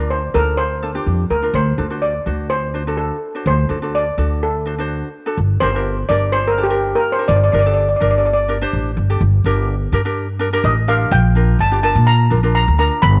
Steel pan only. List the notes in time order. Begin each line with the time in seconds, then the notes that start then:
Already playing: D5
0.10 C5
0.34 A#4
0.57 C5
1.31 A#4
1.55 C5
2.02 D5
2.50 C5
2.97 A4
3.47 C5
3.95 D5
4.43 A4
5.60 C5
6.09 D5
6.32 C5
6.47 A#4
6.63 G4
6.95 A#4
7.12 C5
7.28 D5
7.36 D5
7.44 D5
7.52 D5
7.59 D5
7.66 D5
7.74 D5
7.81 D5
7.89 D5
7.96 D5
8.03 D5
8.11 D5
8.18 D5
8.26 D5
8.33 D5
10.65 D#5
10.88 F5
11.12 G5
11.61 A5
11.83 A5
12.07 A#5
12.55 A#5
12.79 A#5
13.02 B5